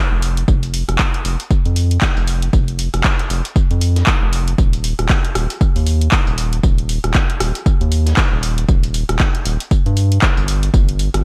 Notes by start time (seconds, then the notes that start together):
0.12 F1
0.22 open hi-hat, tambourine
0.37 closed hi-hat
0.48 F1, kick, tambourine
0.63 closed hi-hat
0.74 open hi-hat, tambourine
0.89 F1, cross-stick, closed hi-hat
0.99 kick, snare, clap, tambourine
1.14 closed hi-hat
1.25 F1, open hi-hat, tambourine
1.40 closed hi-hat
1.51 kick, tambourine
1.66 F2, closed hi-hat
1.76 open hi-hat, tambourine
1.91 closed hi-hat
2.01 kick, snare, clap, tambourine
2.17 F1, closed hi-hat
2.27 open hi-hat, tambourine
2.42 closed hi-hat
2.53 F1, kick, tambourine
2.68 closed hi-hat
2.79 open hi-hat, tambourine
2.94 F1, cross-stick, closed hi-hat
3.04 kick, snare, clap, tambourine
3.19 closed hi-hat
3.30 F1, open hi-hat, tambourine
3.45 closed hi-hat
3.56 kick, tambourine
3.71 F2, closed hi-hat
3.81 open hi-hat, tambourine
3.96 snare, closed hi-hat
4.07 kick, snare, clap, tambourine
4.22 F1
4.33 open hi-hat, tambourine
4.48 closed hi-hat
4.58 D#1, kick, tambourine
4.73 closed hi-hat
4.84 open hi-hat, tambourine
4.99 D#1, cross-stick, closed hi-hat
5.09 kick, snare, clap, tambourine
5.25 closed hi-hat
5.35 D#1, cross-stick, open hi-hat, tambourine
5.50 closed hi-hat
5.61 kick, tambourine
5.76 D#2, open hi-hat
5.87 open hi-hat, tambourine
6.01 closed hi-hat
6.12 kick, snare, clap, tambourine
6.27 D#1, closed hi-hat
6.38 open hi-hat, tambourine
6.53 closed hi-hat
6.63 D#1, kick, tambourine
6.78 closed hi-hat
6.89 open hi-hat, tambourine
7.04 D#1, cross-stick, closed hi-hat
7.14 kick, snare, clap, tambourine
7.30 closed hi-hat
7.40 D#1, cross-stick, open hi-hat, tambourine
7.55 closed hi-hat
7.66 kick, tambourine
7.81 D#2, closed hi-hat
7.92 open hi-hat, tambourine
8.06 snare, closed hi-hat
8.17 kick, snare, clap, tambourine
8.32 D#1
8.43 open hi-hat, tambourine
8.58 closed hi-hat
8.68 D#1, kick, tambourine
8.83 closed hi-hat
8.94 open hi-hat, tambourine
9.09 D#1, cross-stick, closed hi-hat
9.20 kick, snare, clap, tambourine
9.35 closed hi-hat
9.45 D#1, open hi-hat, tambourine
9.60 closed hi-hat
9.71 kick, tambourine
9.86 G2, closed hi-hat
9.97 open hi-hat, tambourine
10.12 closed hi-hat
10.22 kick, snare, clap, tambourine
10.37 G1, closed hi-hat
10.48 open hi-hat, tambourine
10.63 closed hi-hat
10.74 G1, kick, tambourine
10.89 closed hi-hat
10.99 open hi-hat, tambourine
11.14 G1, cross-stick, closed hi-hat